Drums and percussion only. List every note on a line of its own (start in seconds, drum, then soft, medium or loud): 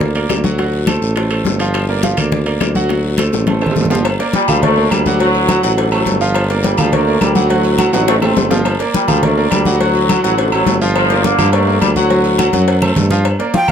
0.00 high bongo medium
0.00 high conga soft
0.00 low conga medium
0.00 long guiro medium
0.15 high conga soft
0.15 high timbale medium
0.29 high bongo medium
0.29 low bongo medium
0.29 high conga medium
0.29 high timbale medium
0.29 low timbale medium
0.29 short guiro medium
0.29 claves medium
0.44 high conga medium
0.44 short guiro medium
0.58 high bongo medium
0.58 high conga soft
0.58 high timbale medium
0.58 long guiro medium
0.73 high bongo soft
0.73 high conga soft
0.87 high bongo medium
0.87 high conga medium
0.87 high timbale medium
0.87 short guiro medium
0.87 claves medium
1.02 high bongo soft
1.02 high conga soft
1.02 short guiro medium
1.16 high bongo medium
1.16 high conga soft
1.16 high timbale medium
1.16 long guiro medium
1.31 high bongo soft
1.31 high conga soft
1.31 high timbale medium
1.31 claves medium
1.45 high bongo medium
1.45 low bongo medium
1.45 high conga medium
1.45 low timbale medium
1.45 short guiro medium
1.59 high conga soft
1.59 high timbale medium
1.59 short guiro medium
1.74 high bongo medium
1.74 high conga soft
1.74 high timbale medium
1.74 long guiro medium
1.74 claves medium
1.89 high conga soft
2.03 high bongo medium
2.03 high conga medium
2.03 high timbale medium
2.03 short guiro medium
2.17 high conga soft
2.17 low conga medium
2.17 high timbale medium
2.17 short guiro medium
2.17 claves medium
2.32 high bongo medium
2.32 high conga soft
2.32 low conga medium
2.32 long guiro medium
2.46 high conga soft
2.46 high timbale medium
2.61 high bongo medium
2.61 low bongo medium
2.61 high conga medium
2.61 high timbale medium
2.61 short guiro medium
2.61 claves medium
2.75 high conga medium
2.75 short guiro medium
2.89 high bongo loud
2.89 high conga soft
2.89 high timbale medium
2.89 long guiro medium
3.04 high conga soft
3.18 high bongo medium
3.18 high conga medium
3.18 high timbale loud
3.18 short guiro medium
3.18 claves medium
3.32 low bongo loud
3.32 high conga soft
3.32 short guiro medium
3.47 low bongo loud
3.47 high conga medium
3.47 high timbale medium
3.47 long guiro medium
3.62 high timbale medium
3.62 claves medium
3.66 low conga medium
3.71 low timbale medium
3.76 low bongo medium
3.76 low conga medium
3.76 short guiro medium
3.81 low timbale loud
3.85 low conga medium
3.90 low bongo medium
3.90 low timbale medium
3.90 short guiro medium
3.95 low conga medium
4.05 cowbell loud
4.05 high conga soft
4.05 low agogo loud
4.05 long guiro medium
4.05 claves medium
4.20 cowbell medium
4.20 high conga soft
4.33 cowbell medium
4.33 high conga medium
4.33 low agogo medium
4.33 short guiro medium
4.48 high conga soft
4.48 low conga medium
4.48 low agogo loud
4.48 short guiro medium
4.48 claves medium
4.62 cowbell loud
4.62 high conga soft
4.62 low conga medium
4.62 low agogo medium
4.62 long guiro medium
4.77 high conga soft
4.91 cowbell medium
4.91 high conga medium
4.91 low timbale medium
4.91 low agogo loud
4.91 short guiro medium
4.91 claves medium
5.06 high conga medium
5.06 short guiro medium
5.20 cowbell loud
5.20 high conga soft
5.20 low agogo medium
5.20 long guiro medium
5.35 high conga soft
5.35 low agogo medium
5.48 cowbell medium
5.48 high conga medium
5.48 low agogo loud
5.48 short guiro medium
5.48 claves medium
5.63 cowbell medium
5.63 high conga soft
5.63 short guiro medium
5.77 cowbell loud
5.77 high conga soft
5.77 low agogo medium
5.77 long guiro medium
5.92 high conga soft
5.92 low agogo loud
5.92 claves medium
6.06 cowbell medium
6.06 high conga medium
6.06 low agogo medium
6.06 short guiro medium
6.21 high conga soft
6.21 short guiro medium
6.34 cowbell loud
6.34 high conga soft
6.34 low agogo loud
6.34 long guiro medium
6.34 claves medium
6.50 cowbell medium
6.50 high conga soft
6.63 cowbell medium
6.63 high conga medium
6.63 low agogo medium
6.63 short guiro medium
6.77 high conga soft
6.77 low conga loud
6.77 low agogo loud
6.77 short guiro medium
6.77 claves medium
6.92 cowbell loud
6.92 high conga soft
6.92 low conga medium
6.92 low agogo medium
6.92 long guiro medium
7.07 high conga soft
7.21 cowbell medium
7.21 high conga medium
7.21 low timbale medium
7.21 low agogo loud
7.21 short guiro medium
7.21 claves medium
7.35 high conga medium
7.35 short guiro medium
7.50 cowbell loud
7.50 high conga soft
7.50 low agogo medium
7.50 long guiro medium
7.64 high conga soft
7.64 low agogo medium
7.78 cowbell medium
7.78 high conga medium
7.78 low agogo loud
7.78 short guiro medium
7.78 claves medium
7.93 cowbell medium
7.93 high bongo medium
7.93 high conga soft
7.93 high timbale medium
7.93 short guiro medium
8.08 cowbell loud
8.08 high bongo loud
8.08 high conga soft
8.08 high timbale loud
8.08 low agogo medium
8.08 long guiro medium
8.22 low bongo loud
8.22 high conga soft
8.22 low timbale medium
8.22 low agogo loud
8.22 claves medium
8.36 cowbell medium
8.36 low bongo loud
8.36 high conga medium
8.36 low timbale medium
8.36 low agogo medium
8.36 short guiro medium
8.51 low bongo loud
8.51 high conga soft
8.51 low timbale loud
8.51 short guiro medium
8.65 cowbell loud
8.65 high conga soft
8.65 low agogo loud
8.65 long guiro medium
8.65 claves medium
8.80 cowbell medium
8.80 high conga soft
8.94 cowbell medium
8.94 high conga medium
8.94 low agogo medium
8.94 short guiro medium
9.08 high conga soft
9.08 low conga medium
9.08 low agogo loud
9.08 short guiro medium
9.08 claves medium
9.23 cowbell loud
9.23 high conga soft
9.23 low conga medium
9.23 low agogo medium
9.23 long guiro medium
9.38 high conga soft
9.51 cowbell medium
9.51 high conga medium
9.51 low timbale medium
9.51 low agogo loud
9.51 short guiro medium
9.51 claves medium
9.65 high conga medium
9.65 short guiro medium
9.80 cowbell loud
9.80 high conga soft
9.80 low agogo medium
9.80 long guiro medium
9.95 high conga soft
9.95 low agogo medium
10.09 cowbell medium
10.09 high conga medium
10.09 low agogo loud
10.09 short guiro medium
10.09 claves medium
10.24 cowbell medium
10.24 high conga soft
10.24 short guiro medium
10.38 cowbell loud
10.38 high conga soft
10.38 low agogo medium
10.38 long guiro medium
10.52 high conga soft
10.52 low agogo loud
10.52 claves medium
10.66 cowbell medium
10.66 high conga medium
10.66 low timbale medium
10.66 low agogo medium
10.66 short guiro medium
10.81 high conga soft
10.81 short guiro medium
10.96 cowbell medium
10.96 high conga soft
10.96 low agogo loud
10.96 long guiro medium
10.96 claves medium
11.10 cowbell medium
11.10 high conga soft
11.24 cowbell medium
11.24 high conga medium
11.24 low agogo medium
11.24 short guiro medium
11.39 high conga soft
11.39 low conga medium
11.39 low agogo loud
11.39 short guiro medium
11.39 claves medium
11.53 cowbell loud
11.53 high conga soft
11.53 low agogo loud
11.53 long guiro medium
11.68 high conga soft
11.81 cowbell medium
11.81 high conga medium
11.81 low agogo loud
11.81 short guiro medium
11.81 claves medium
11.96 high conga medium
11.96 short guiro medium
12.10 cowbell loud
12.10 high conga soft
12.10 low agogo medium
12.10 long guiro medium
12.24 high conga soft
12.24 low agogo medium
12.39 cowbell medium
12.39 high conga loud
12.39 low agogo loud
12.39 short guiro medium
12.39 claves medium
12.53 cowbell medium
12.53 high conga medium
12.53 short guiro medium
12.68 cowbell loud
12.68 low agogo medium
12.68 long guiro medium
12.82 low conga medium
12.82 low agogo loud
12.82 claves medium
12.96 cowbell medium
12.96 low conga loud
12.96 low timbale medium
12.96 low agogo medium
12.96 short guiro medium
13.10 low conga medium
13.10 short guiro medium
13.25 cowbell loud
13.25 high conga soft
13.25 low agogo medium
13.25 claves medium
13.40 cowbell medium
13.40 high conga soft
13.54 cowbell medium
13.54 high conga medium
13.54 low agogo medium
13.68 high conga soft
13.68 low conga medium
13.68 low agogo loud
13.68 claves medium